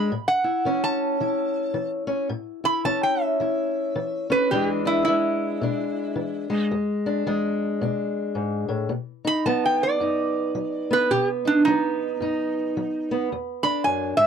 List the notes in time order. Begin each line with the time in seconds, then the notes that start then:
Already playing: G#3 B5
0.12 A2
0.28 F#5
0.44 E4
0.65 E3 C#4
0.84 A5
1.20 E3 E4
1.74 E3
2.07 C#4
2.29 A2
2.64 E4 B5
2.85 E3 C#4 A5
3.03 G5
3.21 E5
3.40 E3 E4
3.96 E3
4.30 C#4 B4
4.51 E2 E3 G#3 D4 G4
4.85 D4 E4
5.05 E3 G#3 E4
5.61 B2 D4
6.16 E3
6.50 G#3
6.71 E2
7.06 D4
7.27 E3 G#3
7.81 B2 D4
8.35 G#2
8.68 A2
8.89 B2
9.25 D#4 B5
9.46 F#3 B3 A5
9.66 G5
9.83 D5
10.00 F#2 D#4
10.55 F#3
10.91 B3 B4
11.11 B2 G4
11.45 D4 D#4
11.65 F#3 B3 D#4
12.20 F#2 D#4
12.77 F#3
13.11 B3
13.32 E2
13.63 D4 B5
13.84 F#2 G#5
14.17 G#2 E5